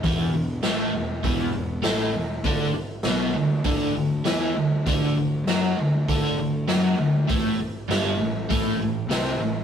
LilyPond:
<<
  \new Staff \with { instrumentName = "Overdriven electric guitar" } { \clef bass \time 4/4 \key b \dorian \tempo 4 = 99 <e, e>8 e,8 <a, a>8 e,8 <e, e>8 e,8 <a, a>8 e,8 | <d d'>8 r8 <b, b>8 d8 <d d'>8 d8 <e e'>8 d8 | <d d'>8 d8 <fis fis'>8 d8 <d d'>8 d8 <fis fis'>8 d8 | <a, a>8 r8 <g, g>8 a,8 <a, a>8 a,8 <c c'>8 a,8 | }
  \new Staff \with { instrumentName = "Picked electric bass" } { \clef bass \time 4/4 \key b \dorian e,,8 e,,8 a,,8 e,,8 e,,8 e,,8 a,,8 e,,8 | d,8 r8 b,,8 d,8 d,8 d,8 e,8 d,8 | d,8 d,8 fis,8 d,8 d,8 d,8 fis,8 d,8 | a,,8 r8 g,,8 a,,8 a,,8 a,,8 c,8 a,,8 | }
  \new DrumStaff \with { instrumentName = "Drums" } \drummode { \time 4/4 <hho bd>4 <hho sn>4 <hho bd>4 <hho sn>4 | <hho bd>4 <hho sn>4 <hho bd>4 <hho sn>4 | <hho bd>4 <hho sn>4 <hho bd>4 <hho sn>4 | <hho bd>4 <hho sn>4 <hho bd>4 <hho sn>4 | }
>>